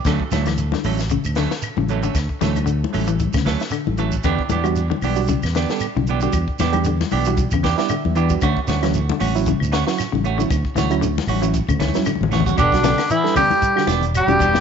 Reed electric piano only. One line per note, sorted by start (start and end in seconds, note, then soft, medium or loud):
4.64 4.80 G3 medium
4.64 4.80 D4 medium
4.64 4.80 F#4 loud
5.16 5.33 G3 medium
5.16 5.33 D4 medium
5.16 5.33 F#4 medium
5.70 5.86 G3 medium
5.70 5.86 D4 medium
5.70 5.86 A4 medium
6.22 6.38 G3 medium
6.22 6.38 D4 medium
6.22 6.38 F#4 medium
6.72 6.89 G3 medium
6.72 6.89 D4 medium
6.72 6.89 G4 loud
7.27 7.43 G3 medium
7.27 7.43 D4 medium
7.27 7.42 F#4 medium
7.65 7.89 G5 medium
7.78 7.94 G3 medium
7.78 7.94 D4 medium
7.78 7.94 E4 medium
7.89 8.14 E5 medium
8.16 8.40 B4 medium
8.30 8.42 G3 medium
8.30 8.43 D4 medium
8.30 8.42 F#4 medium
8.83 8.99 F#3 medium
8.83 8.99 C#4 medium
8.83 8.99 E4 medium
9.35 9.51 F#3 medium
9.35 9.51 C#4 medium
9.35 9.51 E4 medium
9.87 10.03 F#3 medium
9.87 10.03 C#4 medium
9.87 10.03 E4 medium
10.39 10.55 F#3 medium
10.39 10.55 C#4 medium
10.39 10.55 E4 medium
10.90 11.07 F#3 medium
10.90 11.07 C#4 medium
10.90 11.07 E4 medium
11.42 11.59 F#3 medium
11.42 11.58 C#4 medium
11.42 11.59 E4 medium
11.95 12.11 F#3 medium
11.95 12.11 C#4 medium
11.95 12.11 E4 medium
12.46 12.59 F#3 medium
12.46 12.59 C#4 medium
12.46 12.59 F#4 medium
12.73 12.89 G3 medium
12.73 12.89 D4 medium
12.73 12.89 F#4 loud
13.24 13.40 G3 medium
13.24 13.40 D4 medium
13.24 13.40 A4 medium
13.76 13.92 G3 medium
13.76 13.92 D4 medium
13.76 13.92 F#4 medium
14.28 14.44 G3 medium
14.28 14.45 D4 medium
14.28 14.44 F#4 medium